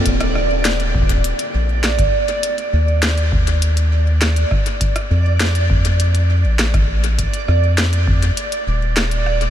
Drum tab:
HH |x-x-----x-x---x-x-x-----x-x---x-|x-x-----x-x---x-x-x-----x-x---x-|x-x-----x-x---x-x-x-----x-x---x-|x-x-----x-x---x-x-x-----x-x---x-|
SD |--r-r---o---------------o-------|--------o---------------o---r---|--r-----o---------------o-r-----|----r---o---------------o---r---|
BD |o-----------oooo----------o-----|------------o---------------o---|o-----------o-------------o-----|o-----------o-------------------|